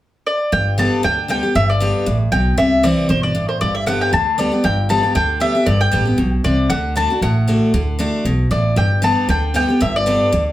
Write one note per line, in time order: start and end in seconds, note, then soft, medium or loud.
0.27 0.53 D5 medium
0.52 0.87 G1 medium
0.52 1.01 G2 medium
0.52 0.76 G5 loud
0.78 1.02 D3 medium
0.78 1.02 G3 medium
0.78 1.03 B3 medium
0.78 1.03 G4 medium
0.78 1.02 A5 loud
1.03 1.39 D2 medium
1.03 1.27 D3 medium
1.03 1.28 G5 loud
1.28 1.42 D3 medium
1.28 1.43 G3 medium
1.28 1.43 B3 medium
1.28 1.41 G4 medium
1.28 1.54 G5 loud
1.43 1.55 B3 soft
1.43 1.54 G4 medium
1.55 1.90 G1 medium
1.55 2.04 G2 medium
1.55 1.68 E5 loud
1.70 2.17 D5 loud
1.80 2.05 D3 medium
1.80 2.05 G3 medium
1.80 2.06 B3 loud
1.80 2.06 G4 loud
2.06 2.28 A1 medium
2.06 2.31 A2 medium
2.32 2.54 B1 medium
2.32 2.57 B2 medium
2.32 2.58 G5 loud
2.57 2.93 C2 medium
2.57 3.07 C3 medium
2.57 2.84 E5 medium
2.83 3.08 E3 medium
2.83 3.08 G3 medium
2.83 3.08 C4 loud
2.83 3.09 E4 loud
2.83 3.07 D5 medium
3.09 3.44 G1 medium
3.09 3.34 B2 medium
3.09 3.23 C5 medium
3.23 3.47 D5 medium
3.35 3.59 A2 medium
3.49 3.60 C5 medium
3.61 3.96 G1 medium
3.61 4.10 G2 medium
3.61 3.74 D5 loud
3.75 3.86 E5 medium
3.86 4.11 D3 medium
3.86 4.11 G3 medium
3.86 4.12 B3 medium
3.86 4.12 G4 loud
3.86 4.01 F#5 loud
4.01 4.12 G5 medium
4.12 4.48 D2 medium
4.12 4.37 D3 medium
4.12 4.39 A5 loud
4.38 4.51 D3 medium
4.38 4.52 G3 medium
4.38 4.52 B3 medium
4.38 4.50 G4 medium
4.38 4.65 D5 medium
4.52 4.64 B3 soft
4.52 4.63 G4 medium
4.64 4.99 G1 medium
4.64 5.13 G2 loud
4.64 4.88 G5 loud
4.89 5.03 D3 medium
4.89 5.03 G3 medium
4.89 5.03 B3 loud
4.89 5.02 G4 medium
4.89 5.14 A5 loud
5.03 5.15 B3 soft
5.03 5.14 G4 medium
5.15 5.50 D2 medium
5.15 5.39 D3 medium
5.15 5.41 G5 loud
5.40 5.54 D3 medium
5.40 5.54 G3 medium
5.40 5.55 B3 medium
5.40 5.54 G4 medium
5.40 5.65 E5 loud
5.55 5.67 B3 soft
5.55 5.66 G4 medium
5.66 5.84 G1 medium
5.66 6.16 G2 loud
5.66 5.80 D5 medium
5.81 6.29 G5 loud
5.91 6.14 A1 medium
5.91 6.06 D3 medium
5.91 6.06 G3 medium
5.91 6.06 B3 medium
5.91 6.04 G4 medium
6.05 6.18 B3 medium
6.05 6.17 G4 medium
6.18 6.40 B1 medium
6.18 6.43 B2 medium
6.44 6.66 C2 medium
6.44 6.69 C3 medium
6.44 6.71 D5 medium
6.70 7.05 D2 medium
6.70 6.94 D3 loud
6.70 6.94 F#5 loud
6.96 7.09 D3 medium
6.96 7.10 A3 medium
6.96 7.10 D4 loud
6.96 7.09 F#4 loud
6.96 7.20 A5 loud
7.10 7.22 D4 soft
7.10 7.21 F#4 medium
7.21 7.57 A1 medium
7.21 7.71 A2 medium
7.21 8.47 F#5 medium
7.48 7.72 D3 medium
7.48 7.73 A3 medium
7.48 7.73 D4 medium
7.48 7.73 F#4 medium
7.73 8.09 D2 medium
7.73 7.97 D3 medium
7.99 8.24 D3 medium
7.99 8.24 A3 medium
7.99 8.24 D4 loud
7.99 8.24 F#4 medium
8.25 8.47 B1 medium
8.25 8.50 B2 medium
8.51 8.73 A1 medium
8.51 8.75 A2 medium
8.51 8.75 D5 medium
8.76 9.12 G1 medium
8.76 9.26 G2 medium
8.76 9.01 G5 medium
9.02 9.27 D3 medium
9.02 9.27 G3 medium
9.02 9.28 B3 medium
9.02 9.28 G4 medium
9.02 9.27 A5 medium
9.28 9.64 D2 medium
9.28 9.53 D3 medium
9.28 9.55 G5 medium
9.54 9.68 D3 medium
9.54 9.68 G3 medium
9.54 9.68 B3 medium
9.54 9.67 G4 medium
9.54 9.81 G5 medium
9.68 9.80 B3 soft
9.68 9.80 G4 medium
9.81 10.16 G1 medium
9.81 10.30 G2 medium
9.81 9.94 E5 medium
9.96 10.43 D5 loud
10.06 10.31 D3 medium
10.06 10.31 G3 medium
10.06 10.31 B3 loud
10.06 10.31 G4 loud
10.32 10.52 D2 medium
10.32 10.52 D3 medium